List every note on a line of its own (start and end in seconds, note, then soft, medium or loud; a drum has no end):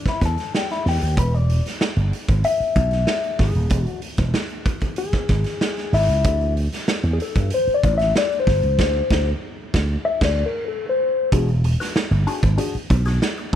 0.06 0.22 E4 medium
0.06 muted slap bass stroke soft
0.06 kick medium
0.06 snare soft
0.06 closed hi-hat soft
0.21 0.35 E2 medium
0.21 kick medium
0.21 snare soft
0.21 closed hi-hat medium
0.26 0.56 A4 medium
0.38 snare soft
0.38 closed hi-hat medium
0.55 0.71 G4 medium
0.55 snare medium
0.70 0.85 E4 medium
0.70 snare soft
0.70 closed hi-hat soft
0.86 1.00 E2 medium
0.86 1.19 G4 medium
0.86 snare soft
0.86 open hi-hat medium
1.01 1.16 D#2 medium
1.01 closed hi-hat soft
1.17 1.59 E1 loud
1.17 1.35 B4 loud
1.17 kick loud
1.17 closed hi-hat medium
1.35 1.65 D5 loud
1.35 closed hi-hat soft
1.50 closed hi-hat medium
1.66 snare soft
1.66 closed hi-hat soft
1.81 snare loud
1.96 2.10 G1 medium
1.96 closed hi-hat soft
2.13 closed hi-hat medium
2.28 2.42 G#1 medium
2.28 kick medium
2.28 closed hi-hat medium
2.44 3.42 E5 medium
2.44 closed hi-hat loud
2.60 muted slap bass stroke soft
2.60 closed hi-hat soft
2.76 3.04 B1 loud
2.76 kick loud
2.76 closed hi-hat medium
2.91 snare soft
2.91 closed hi-hat medium
3.07 snare loud
3.24 closed hi-hat soft
3.39 3.53 G#1 medium
3.39 3.85 G#4 medium
3.39 kick medium
3.39 snare soft
3.39 open hi-hat medium
3.55 3.69 D#1 medium
3.55 closed hi-hat soft
3.70 3.85 E1 loud
3.70 kick loud
3.70 closed hi-hat medium
3.85 3.99 F#4 medium
3.85 closed hi-hat soft
4.02 closed hi-hat medium
4.17 4.33 E1 medium
4.17 kick loud
4.17 snare soft
4.17 closed hi-hat soft
4.34 snare loud
4.49 closed hi-hat soft
4.65 kick loud
4.65 closed hi-hat medium
4.81 kick medium
4.81 closed hi-hat soft
4.96 5.96 G#4 loud
4.96 closed hi-hat medium
5.12 muted slap bass stroke soft
5.12 kick medium
5.12 snare soft
5.12 closed hi-hat soft
5.29 5.44 G#1 medium
5.29 kick medium
5.29 snare soft
5.29 closed hi-hat medium
5.44 snare soft
5.44 closed hi-hat soft
5.61 snare loud
5.77 snare soft
5.77 closed hi-hat soft
5.92 6.07 G#1 medium
5.92 6.53 E4 medium
5.92 snare soft
5.92 open hi-hat medium
6.08 6.23 C#2 medium
6.08 closed hi-hat soft
6.24 6.67 D2 loud
6.24 kick loud
6.24 closed hi-hat medium
6.41 closed hi-hat soft
6.57 closed hi-hat medium
6.72 snare soft
6.72 closed hi-hat medium
6.88 snare loud
7.03 7.18 E2 medium
7.03 closed hi-hat soft
7.13 7.20 G#4 medium
7.20 7.54 A4 medium
7.20 closed hi-hat medium
7.35 7.50 G2 medium
7.35 kick medium
7.35 closed hi-hat medium
7.50 7.75 C5 medium
7.50 closed hi-hat loud
7.67 muted slap bass stroke medium
7.67 closed hi-hat soft
7.74 7.95 D5 medium
7.83 8.12 A1 loud
7.83 kick medium
7.83 closed hi-hat medium
7.98 8.17 E5 loud
7.98 snare soft
7.98 closed hi-hat medium
8.16 8.38 D5 loud
8.16 snare loud
8.32 closed hi-hat soft
8.39 9.29 C5 medium
8.47 8.61 G1 loud
8.47 kick medium
8.47 snare soft
8.47 open hi-hat medium
8.63 8.78 C#2 medium
8.63 closed hi-hat medium
8.78 9.00 D2 loud
8.78 kick loud
8.78 snare loud
8.78 crash medium
9.11 9.32 D2 loud
9.11 kick loud
9.11 snare loud
9.74 9.95 D2 loud
9.74 kick loud
9.74 snare loud
10.05 10.24 E5 loud
10.21 10.43 D2 loud
10.21 10.45 D5 medium
10.21 kick loud
10.21 snare medium
10.21 crash medium
10.46 10.68 A#4 medium
10.68 10.88 A4 medium
10.89 11.29 C5 medium
11.32 11.74 E1 loud
11.32 11.49 D4 medium
11.32 11.50 F#4 medium
11.32 11.50 G#4 loud
11.32 kick loud
11.32 closed hi-hat medium
11.49 closed hi-hat soft
11.64 muted clean electric guitar stroke soft
11.64 closed hi-hat medium
11.80 11.94 D4 soft
11.80 11.93 F#4 medium
11.80 11.93 B4 medium
11.80 snare soft
11.80 closed hi-hat medium
11.96 snare loud
12.11 12.25 G1 medium
12.11 muted clean electric guitar stroke soft
12.11 closed hi-hat soft
12.27 12.44 D4 medium
12.27 12.43 F#4 medium
12.27 12.42 G#4 medium
12.27 closed hi-hat medium
12.43 12.57 G#1 medium
12.43 muted clean electric guitar stroke medium
12.43 kick medium
12.43 closed hi-hat soft
12.58 12.75 D4 medium
12.58 12.75 F#4 medium
12.58 12.75 G#4 loud
12.58 closed hi-hat loud
12.75 muted slap bass stroke medium
12.75 closed hi-hat soft
12.90 13.18 B1 loud
12.90 muted clean electric guitar stroke soft
12.90 kick medium
12.90 closed hi-hat medium
13.05 13.20 D4 medium
13.05 13.19 F#4 medium
13.05 13.19 G#4 medium
13.05 snare soft
13.05 closed hi-hat medium
13.22 snare medium
13.37 muted clean electric guitar stroke medium
13.37 closed hi-hat soft